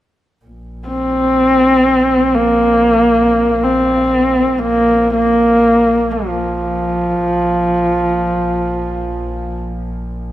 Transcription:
0.45 7.25 A#1 soft
0.88 2.36 C4 medium
2.35 3.65 A#3 medium
3.64 4.61 C4 medium
4.59 5.14 A#3 medium
5.15 6.13 A#3 medium
6.12 9.59 F3 medium
7.26 10.32 A#1 soft

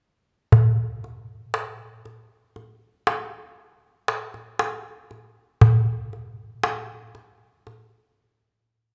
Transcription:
0.52 darbuka dum medium
1.04 darbuka ka soft
1.54 darbuka tek medium
2.05 darbuka ka soft
2.56 darbuka ka soft
3.07 darbuka tek medium
4.08 darbuka tek medium
4.34 darbuka ka soft
4.59 darbuka tek medium
5.11 darbuka ka soft
5.61 darbuka dum medium
6.13 darbuka ka soft
6.63 darbuka tek medium
7.15 darbuka ka soft
7.67 darbuka ka soft

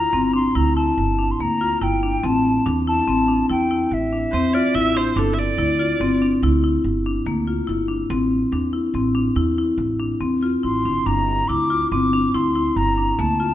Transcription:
0.00 0.32 A#5 medium
0.13 0.47 G1 medium
0.13 0.25 C4 medium
0.34 0.45 D4 medium
0.34 0.57 C6 medium
0.55 0.89 D2 medium
0.55 0.67 E4 medium
0.55 0.76 A#5 medium
0.76 0.99 E4 medium
0.76 1.33 A5 medium
0.97 1.31 G1 medium
1.19 1.30 D4 medium
1.31 1.43 C6 medium
1.40 1.73 D2 medium
1.40 1.52 A#3 medium
1.40 1.84 A#5 medium
1.61 1.72 F4 medium
1.81 2.15 G1 medium
1.81 1.93 E4 medium
1.81 2.27 G5 medium
2.03 2.14 D4 medium
2.23 2.57 A1 medium
2.23 2.46 C4 medium
2.23 2.67 A5 medium
2.66 2.99 E2 medium
2.66 2.77 D4 medium
2.87 2.98 E4 medium
2.87 3.47 A5 medium
3.07 3.41 A1 medium
3.07 3.19 C4 medium
3.28 3.40 D4 medium
3.49 3.83 E2 medium
3.49 3.61 E4 medium
3.49 3.95 G5 medium
3.71 3.93 E4 medium
3.91 4.25 A1 medium
3.91 4.97 E5 medium
4.13 4.24 D4 medium
4.32 4.66 E2 medium
4.32 4.45 C4 medium
4.32 4.55 C5 medium
4.54 4.66 F4 medium
4.54 4.76 D5 medium
4.75 5.08 A1 medium
4.75 4.86 E4 medium
4.75 4.98 E5 loud
4.95 5.06 D4 medium
4.95 5.20 C5 medium
5.16 5.50 G1 medium
5.16 5.39 D4 medium
5.16 5.35 A4 loud
5.34 5.40 E5 medium
5.39 6.22 D5 medium
5.58 5.92 D2 medium
5.58 5.70 E4 medium
5.79 5.91 F4 medium
6.00 6.34 G1 medium
6.00 6.12 C4 medium
6.22 6.33 D4 medium
6.43 6.76 D2 medium
6.43 6.54 E4 medium
6.64 6.86 E4 medium
6.84 7.18 G1 medium
7.06 7.17 D4 medium
7.26 7.59 D2 medium
7.26 7.38 A#3 medium
7.47 7.59 F4 medium
7.67 8.02 G1 medium
7.67 7.79 E4 medium
7.88 8.00 D4 medium
8.10 8.43 A1 medium
8.10 8.33 C4 medium
8.52 8.85 E2 medium
8.52 8.64 D4 medium
8.73 8.84 E4 medium
8.94 9.27 A1 medium
8.94 9.06 C4 medium
9.15 9.26 D4 medium
9.36 9.70 E2 medium
9.36 9.48 E4 medium
9.58 9.81 E4 medium
9.78 10.12 A1 medium
10.00 10.11 D4 medium
10.20 10.55 E2 medium
10.20 10.32 C4 medium
10.43 10.54 F4 medium
10.63 10.84 A1 medium
10.63 10.75 E4 medium
10.63 11.08 C6 medium
10.85 11.05 G1 medium
10.85 10.97 D4 medium
11.06 11.41 G1 medium
11.06 11.29 D4 medium
11.06 11.50 A#5 medium
11.48 11.84 D2 medium
11.48 11.61 E4 medium
11.48 11.91 D6 loud
11.70 11.82 F4 medium
11.91 12.26 G1 medium
11.91 12.04 C4 medium
11.91 12.37 D6 medium
12.13 12.25 D4 medium
12.34 12.68 D2 medium
12.34 12.46 E4 medium
12.34 12.78 C6 medium
12.55 12.78 E4 medium
12.76 13.10 G1 medium
12.76 13.21 A#5 medium
12.98 13.09 D4 medium
13.19 13.53 D2 medium
13.19 13.30 A#3 medium
13.19 13.54 A5 medium
13.40 13.51 F4 medium

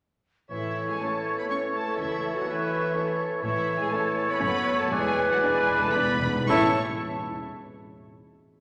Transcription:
0.51 0.90 A1 medium
0.51 0.90 A2 soft
0.51 1.22 A2 soft
0.51 0.86 E3 soft
0.51 3.40 E3 soft
0.51 0.86 E4 medium
0.51 3.40 A4 soft
0.51 1.95 C#5 medium
0.51 3.40 C#5 soft
0.51 0.86 E5 medium
0.88 1.01 G#3 soft
0.88 1.01 G#4 soft
0.88 1.01 G#5 medium
1.00 1.38 A3 soft
1.00 1.37 A3 soft
1.00 1.37 C#4 soft
1.00 1.38 A4 soft
1.00 1.38 A5 medium
1.38 1.50 B3 medium
1.38 1.43 B4 soft
1.38 1.44 B5 medium
1.50 1.86 A3 soft
1.50 1.86 C#4 soft
1.50 1.61 C#4 medium
1.50 1.74 C#5 medium
1.50 1.58 C#6 medium
1.74 1.98 A3 medium
1.74 1.99 A4 medium
1.74 1.98 A5 medium
1.97 2.37 C#2 medium
1.97 2.37 C#3 medium
1.97 2.35 E3 soft
1.97 2.35 E4 medium
1.97 2.46 A4 soft
1.97 2.34 E5 medium
2.35 2.47 F#3 medium
2.35 2.47 F#4 medium
2.35 2.47 F#5 medium
2.47 3.18 E3 medium
2.47 2.84 A3 soft
2.47 2.84 C#4 soft
2.47 3.18 E4 medium
2.47 2.95 B4 medium
2.47 3.20 E5 medium
2.95 3.32 A3 medium
2.95 3.32 C#4 medium
2.95 3.43 A4 soft
3.43 3.82 A1 medium
3.43 4.13 A2 medium
3.43 3.82 A2 medium
3.43 4.43 E3 medium
3.43 3.78 E3 medium
3.43 3.77 E4 medium
3.43 4.89 A4 medium
3.43 5.39 C#5 medium
3.43 4.89 C#5 medium
3.43 3.77 E5 medium
3.80 3.92 G#3 medium
3.80 3.92 G#4 medium
3.80 3.93 G#5 medium
3.91 4.29 A3 medium
3.91 4.29 C#4 medium
3.91 4.28 A4 medium
3.91 4.29 A5 medium
4.28 4.35 B3 medium
4.28 4.39 B4 medium
4.28 4.39 B5 medium
4.40 4.81 F#1 medium
4.40 4.81 F#2 medium
4.40 4.92 F#3 medium
4.40 4.79 A3 medium
4.40 4.78 B3 medium
4.40 4.79 C#4 medium
4.40 4.78 B4 medium
4.40 4.78 B5 loud
4.78 4.92 A3 medium
4.78 4.91 A4 medium
4.78 4.92 A5 medium
4.90 5.32 E1 medium
4.90 4.98 E2 soft
4.90 5.33 E2 medium
4.90 6.20 E3 medium
4.90 5.29 G#3 medium
4.90 5.29 G#4 medium
4.90 6.20 B4 medium
4.90 6.20 D5 medium
4.90 5.30 G#5 loud
4.99 5.06 E2 soft
5.07 5.14 E2 soft
5.15 5.21 E2 soft
5.23 5.30 E2 soft
5.30 5.38 E2 soft
5.30 5.43 F#3 medium
5.30 5.43 F#4 medium
5.30 5.43 F#5 medium
5.39 5.45 E2 soft
5.39 5.82 G#3 medium
5.39 5.97 B4 medium
5.39 5.81 G#5 medium
5.43 5.54 E2 soft
5.43 5.82 B3 medium
5.43 5.83 D4 medium
5.43 5.82 G#4 medium
5.55 5.61 E2 soft
5.62 5.69 E2 soft
5.70 5.77 E2 medium
5.78 5.85 E2 medium
5.78 5.96 A4 medium
5.78 5.96 A5 loud
5.83 5.93 E2 medium
5.83 5.96 A3 medium
5.94 6.01 E2 medium
5.94 6.48 B3 medium
5.94 6.36 B3 medium
5.94 6.36 D4 medium
5.94 6.49 B4 medium
5.94 6.22 D5 medium
5.94 6.49 B5 loud
6.02 6.09 E2 medium
6.10 6.18 E2 medium
6.19 6.25 E2 medium
6.27 6.34 E2 medium
6.35 6.43 E2 medium
6.49 6.79 A1 medium
6.49 6.79 A2 medium
6.49 6.74 A2 medium
6.49 6.72 E3 medium
6.49 6.78 A3 medium
6.49 6.71 C#4 medium
6.49 6.78 E4 medium
6.49 6.71 E4 medium
6.49 6.78 C#5 medium
6.49 6.72 E5 medium
6.49 6.78 A5 medium
6.49 6.79 C#6 loud

